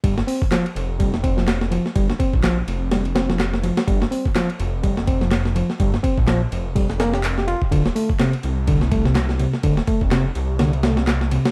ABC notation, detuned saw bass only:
X:1
M:4/4
L:1/16
Q:"Swing 16ths" 1/4=125
K:Gm
V:1 name="Detuned saw bass" clef=bass
G,,, z4 z F,,,8 z2 | G,,, z2 B,,,2 z F,,,8 z2 | G,,, z4 z F,,,8 z2 | G,,, z2 B,,,2 z F,,,8 z2 |
D,,, z4 z C,,8 z2 | D,,, z2 F,,,2 z C,,8 z2 |]